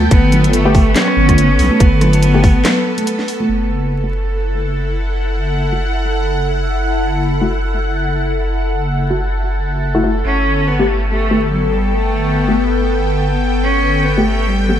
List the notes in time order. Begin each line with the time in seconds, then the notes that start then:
Already playing: B3 A4
0.02 high conga
0.11 G1 B3 A4, kick, closed hi-hat
0.32 closed hi-hat, high conga, low conga
0.44 closed hi-hat
0.53 A3, closed hi-hat
0.65 A3 B3 G4
0.75 kick, open hi-hat, high conga
0.95 C#4, snare, clap, closed hi-hat, low conga
1.08 cross-stick
1.17 G1
1.28 kick, cross-stick, closed hi-hat, high conga
1.38 closed hi-hat
1.59 B1, open hi-hat
1.70 high conga
1.80 G1 B3, kick, closed hi-hat
2.01 cross-stick, closed hi-hat, high conga, low conga
2.13 closed hi-hat
2.22 closed hi-hat
2.34 A3 B3 G4
2.44 kick, open hi-hat, high conga
2.65 cross-stick, snare, clap, closed hi-hat, low conga
2.98 closed hi-hat, high conga
3.07 closed hi-hat
3.19 snare
3.28 open hi-hat
3.40 high conga
3.49 F#1 E4 A4 F#5
4.03 A3 E4 F#4
4.55 A3 E4 F#4
5.72 A3 E4 F#4
7.41 A3 E4 F#4
9.10 A3 E4 F#4
9.95 A3 E4 F#4
10.04 A3 E4 F#4
10.25 G1 B3 C#4 G5
10.68 B3
10.79 A3 B3 G4
10.89 A3
11.10 A3
11.31 A3 B3 G4
11.52 F#3
11.73 G3
11.94 A3
12.48 A3 B3 G4
13.63 C#4
14.05 B3
14.17 A3 B3 G4
14.26 A3
14.47 G3
14.68 F#3 A3 B3 G4